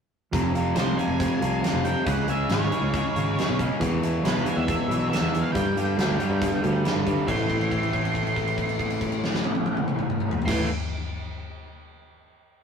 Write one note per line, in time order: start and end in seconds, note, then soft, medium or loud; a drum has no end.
0.33 0.71 F1 medium
0.33 0.53 F2 medium
0.33 0.53 C3 medium
0.33 0.54 F3 medium
0.33 kick loud
0.33 closed hi-hat medium
0.54 0.75 F2 medium
0.54 0.76 C3 medium
0.54 0.76 F3 medium
0.54 closed hi-hat medium
0.75 0.95 C2 medium
0.75 0.97 F2 medium
0.75 0.98 C3 medium
0.75 0.98 F3 medium
0.75 2.49 G#3 medium
0.75 0.98 C5 medium
0.75 snare loud
0.75 closed hi-hat medium
0.97 1.18 F2 medium
0.97 1.19 C3 medium
0.97 1.19 F3 medium
0.97 2.06 F4 medium
0.97 1.59 G#5 medium
0.97 closed hi-hat medium
1.07 1.27 F1 medium
1.19 1.40 F2 medium
1.19 1.40 C3 medium
1.19 1.40 F3 medium
1.19 1.62 C4 medium
1.19 kick loud
1.19 closed hi-hat medium
1.41 1.60 C2 medium
1.41 1.60 F2 medium
1.41 1.61 C3 medium
1.41 1.61 F3 medium
1.41 closed hi-hat medium
1.62 1.82 F2 medium
1.62 1.83 C3 medium
1.62 1.83 F3 loud
1.62 2.07 C4 medium
1.62 snare loud
1.62 closed hi-hat medium
1.73 1.93 F1 medium
1.84 2.05 F2 medium
1.84 2.05 C3 medium
1.84 2.05 F3 medium
1.84 2.06 G5 medium
1.84 closed hi-hat medium
2.06 2.45 C#2 medium
2.06 2.27 C#3 medium
2.06 2.28 G#3 medium
2.06 2.28 C#4 loud
2.06 2.29 F#5 medium
2.06 kick loud
2.06 closed hi-hat medium
2.28 2.49 C#3 medium
2.28 2.50 G#3 medium
2.28 2.50 C#4 medium
2.28 2.52 E5 medium
2.28 closed hi-hat medium
2.49 2.69 G#1 medium
2.49 2.71 C#3 medium
2.49 2.72 G#3 medium
2.49 2.72 C#4 medium
2.49 3.56 C#5 medium
2.49 snare loud
2.49 closed hi-hat medium
2.62 snare soft
2.72 2.93 C#3 medium
2.72 2.94 G#3 medium
2.72 2.94 C#4 medium
2.72 3.82 E4 medium
2.72 closed hi-hat medium
2.81 3.02 C#2 medium
2.94 3.15 C#3 medium
2.94 3.16 G#3 medium
2.94 3.16 C#4 medium
2.94 kick loud
2.94 closed hi-hat medium
3.15 3.35 G#1 medium
3.15 3.36 C#3 medium
3.15 3.37 G#3 medium
3.15 3.37 C#4 medium
3.15 closed hi-hat medium
3.37 3.58 C#3 medium
3.37 3.59 G#3 medium
3.37 3.59 C#4 medium
3.37 snare loud
3.37 closed hi-hat medium
3.48 3.68 B1 medium
3.59 3.80 C#3 medium
3.59 3.80 G#3 medium
3.59 3.80 C#4 medium
3.59 kick medium
3.59 closed hi-hat medium
3.80 4.19 E2 medium
3.80 4.02 E2 medium
3.80 4.03 B2 medium
3.80 4.03 E3 loud
3.80 kick loud
3.80 closed hi-hat medium
4.03 4.23 E2 medium
4.03 4.23 B2 medium
4.03 4.24 E3 medium
4.03 closed hi-hat medium
4.23 4.43 B1 medium
4.23 4.45 E2 medium
4.23 4.46 B2 medium
4.23 4.46 E3 medium
4.23 5.33 G#3 medium
4.23 4.46 B4 medium
4.23 snare loud
4.23 closed hi-hat medium
4.37 snare soft
4.45 4.66 E2 medium
4.45 4.66 B2 medium
4.45 4.67 E3 loud
4.45 5.55 E4 medium
4.45 4.57 G#5 medium
4.45 closed hi-hat medium
4.56 4.77 E2 medium
4.56 5.07 E5 medium
4.67 4.88 E2 medium
4.67 4.89 B2 medium
4.67 4.90 E3 medium
4.67 5.09 B3 medium
4.67 kick loud
4.67 closed hi-hat medium
4.89 5.09 B1 medium
4.89 5.08 E2 medium
4.89 5.09 B2 medium
4.89 5.09 E3 medium
4.89 closed hi-hat medium
5.09 5.31 E2 medium
5.09 5.32 B2 medium
5.09 5.32 E3 medium
5.09 6.41 B3 medium
5.09 5.44 E5 medium
5.13 snare loud
5.13 closed hi-hat medium
5.21 5.41 E2 medium
5.32 5.53 E2 medium
5.32 5.54 B2 medium
5.32 5.54 E3 medium
5.32 closed hi-hat medium
5.41 5.52 F5 medium
5.52 5.75 G2 loud
5.52 5.94 G2 medium
5.52 5.76 D3 medium
5.52 5.76 G3 medium
5.52 6.80 G5 medium
5.52 kick loud
5.52 closed hi-hat medium
5.76 5.96 G2 medium
5.76 5.97 D3 medium
5.76 5.97 G3 medium
5.76 closed hi-hat medium
5.97 6.17 D2 medium
5.97 6.18 G2 medium
5.97 6.18 D3 medium
5.97 6.19 G3 medium
5.97 snare loud
5.97 closed hi-hat medium
6.19 6.39 G2 medium
6.19 6.40 D3 medium
6.19 6.40 G3 loud
6.19 7.28 D4 medium
6.19 closed hi-hat medium
6.30 6.50 G2 medium
6.41 6.61 G2 medium
6.41 6.61 D3 medium
6.41 6.61 G3 medium
6.41 6.83 B3 medium
6.41 kick loud
6.41 closed hi-hat medium
6.62 6.82 D2 medium
6.62 6.82 G2 medium
6.62 6.83 D3 medium
6.62 6.84 G3 medium
6.62 closed hi-hat medium
6.83 7.05 G2 medium
6.83 7.05 D3 loud
6.83 7.06 G3 loud
6.83 7.28 B3 medium
6.83 snare loud
6.83 closed hi-hat medium
6.95 7.15 G2 medium
7.06 7.27 G2 medium
7.06 7.26 D3 medium
7.06 7.27 G3 medium
7.06 kick medium
7.06 closed hi-hat medium
7.26 10.38 A1 medium
7.26 10.45 A2 medium
7.26 10.47 E3 medium
7.26 10.49 A3 loud
7.26 10.49 C4 loud
7.26 10.50 E4 medium
7.26 10.37 C6 medium
7.26 kick loud
7.26 crash medium
7.50 kick medium
7.50 crash soft
7.61 crash soft
7.71 kick medium
7.71 crash soft
7.83 crash soft
7.93 kick medium
7.93 crash soft
8.05 crash soft
8.15 kick medium
8.15 crash soft
8.27 crash soft
8.36 kick medium
8.36 crash soft
8.47 crash soft
8.58 kick medium
8.58 crash soft
8.69 crash soft
8.79 kick medium
8.79 crash soft
8.90 crash soft
9.01 kick medium
9.01 crash soft
9.12 crash soft
9.24 snare medium
9.34 snare medium
9.44 high tom medium
9.55 high tom medium
9.66 high tom medium
9.77 mid tom medium
9.88 mid tom medium
9.99 mid tom medium
10.10 mid tom medium
10.20 mid tom medium
10.31 floor tom loud
10.42 10.66 A2 medium
10.42 10.64 C6 medium
10.42 floor tom loud
10.47 10.65 A1 medium
10.47 10.67 E3 medium
10.47 10.68 A3 loud
10.47 10.68 C4 medium
10.47 10.68 E4 medium
10.47 10.68 B4 loud
10.47 kick loud
10.47 snare medium
10.47 crash loud